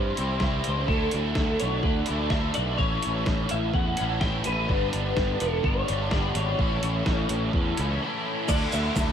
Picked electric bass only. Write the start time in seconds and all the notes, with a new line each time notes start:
Already playing: G2
0.19 C2
0.42 C2
0.67 C#2
0.89 D2
1.14 D2
1.36 D2
1.62 B1
1.83 D2
2.10 D2
2.31 D2
2.57 B1
2.79 A1
3.06 A1
3.27 A1
3.52 A1
3.73 E2
4.01 A1
4.22 A1
4.48 A1
4.70 G1
4.94 G1
5.17 G1
5.41 E1
5.64 G1
5.90 G1
6.12 G1
6.35 G#1
6.59 A1
6.82 A1
7.06 A1
7.30 A1
7.54 E2
7.79 C#2
8.49 D2
8.73 D2
8.96 D2